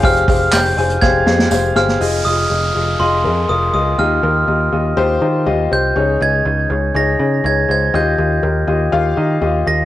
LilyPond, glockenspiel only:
\new Staff \with { instrumentName = "Glockenspiel" } { \time 4/4 \key f \minor \tempo 4 = 122 f'''4 g'''4 aes'''4. f'''8~ | f'''8 ees'''4. c'''4 ees'''8 ees'''8 | f'''2. r8 g'''8~ | g'''8 aes'''4. bes'''4 aes'''8 aes'''8 |
g'''2. r8 bes'''8 | }